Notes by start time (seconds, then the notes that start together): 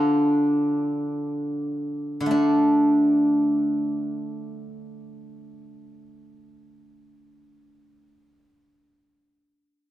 Already playing: D3 D4 F4 A4 C5
2.21 D3
2.26 A3
2.31 D4